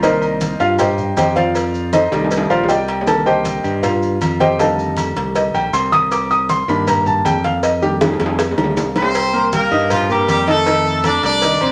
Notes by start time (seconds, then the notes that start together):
Already playing: C2
0.02 D#3 A#3 D#4 A#4 C5 D5 D#5, cowbell, high conga, low agogo, maracas
0.22 high conga, low agogo, maracas
0.41 cowbell, high conga, maracas
0.60 G2 F4 F5, high conga, low agogo, maracas
0.79 G4 C5 D#5 G5, cowbell, high conga, low conga, low agogo, maracas
0.98 high conga, low conga, maracas
1.17 F2 G4 C5 D#5 G5, cowbell, high conga, low timbale, low agogo, maracas
1.36 F4 C5 D5 F5, cowbell, high conga, maracas
1.55 cowbell, high conga, low agogo, maracas
1.74 high conga, maracas
1.93 D#4 A4 C5 D#5, cowbell, high conga, low agogo, maracas
2.11 C2 D#3 G3 A3 D5, cowbell, high conga, high timbale, low agogo, maracas
2.24 high timbale
2.31 cowbell, high conga, low agogo, maracas
2.37 high timbale
2.50 A#1 F4 C5 D5 F5, high conga, low agogo, maracas
2.63 low timbale
2.69 C2 G4 D5 D#5 G5, cowbell, high conga, maracas
2.88 cowbell, low agogo, maracas
3.01 low timbale
3.07 D3 D#3 A#3 A4 A5, cowbell, high conga, low agogo, maracas
3.26 G4 C5 D#5 G5, high conga, low agogo, maracas
3.45 cowbell, high conga, maracas
3.64 G2, high conga, low agogo, maracas
3.83 F4 F5, cowbell, high conga, low conga, low agogo, maracas
4.02 high conga, maracas
4.21 F2, cowbell, high conga, low agogo, maracas
4.40 G4 C5 D#5 G5, cowbell, high conga, maracas
4.59 D3 D#3 G3 A3 A4 D#5 F5 A5, cowbell, low agogo, maracas
4.78 high conga, maracas
4.97 cowbell, high conga, low agogo, maracas
5.16 C2, cowbell, high conga, low agogo, maracas
5.35 D#5, cowbell, high conga, low agogo, maracas
5.54 A#1 G5, high conga, low agogo, maracas
5.73 C2 C6, cowbell, high conga, maracas
5.92 D#6, cowbell, high conga, low agogo, maracas
6.11 D6, cowbell, high conga, low agogo, maracas
6.30 D#6, high conga, low agogo, maracas
6.49 C6, cowbell, high conga, maracas
6.68 G2 D#3 A#3 D4 B5, high conga, low agogo, maracas
6.87 A#5, cowbell, high conga, low conga, low agogo, maracas
7.06 A5, high conga, low conga, maracas
7.25 F2 G5, cowbell, high conga, low timbale, low agogo, maracas
7.44 F5, cowbell, high conga, maracas
7.63 D#5, cowbell, high conga, low agogo, maracas
7.82 D#3 G3 A3 D4 G4, high conga, maracas
8.01 cowbell, high bongo, high conga, high timbale, low agogo, maracas
8.13 high timbale
8.20 F2, cowbell, high bongo, high conga, low agogo, maracas
8.26 high timbale
8.39 cowbell, high bongo, high conga, low agogo, maracas
8.51 low timbale
8.58 D2 D#3 G3 A3 D4, low bongo, high conga, low agogo, maracas
8.64 low timbale
8.77 C2, cowbell, low bongo, high conga, low timbale, maracas
8.96 C4 C5, cowbell, low bongo, low agogo, maracas
9.02 low timbale
9.15 cowbell, high conga, low agogo, maracas
9.34 A#3 A#4 A#5, high conga, low agogo, maracas
9.52 G3 A#3 G4 A#4 G5, cowbell, high conga, maracas
9.71 G2 D#4 D#5 D#6, high conga, low agogo, maracas
9.90 F3 F4, cowbell, high conga, low conga, low agogo, maracas
10.10 G3 A#3 G4 A#4 A#5, high conga, low conga, maracas
10.28 F2 G3 G4, cowbell, high conga, low agogo, maracas
10.47 D#3 A3 D#4 A4 D#5, cowbell, high conga, maracas
10.66 D#3 D#4 D#5, cowbell, high conga, low agogo, maracas
10.85 high conga, maracas
11.04 A3 D4 A4 D5 A5, cowbell, high conga, low agogo, maracas
11.23 C2 D4 D5, cowbell, high conga, low agogo, maracas
11.42 D#3 D#4 D#5, cowbell, high conga, low agogo, maracas
11.61 A#1 C4 C5 C6, high conga, low agogo, maracas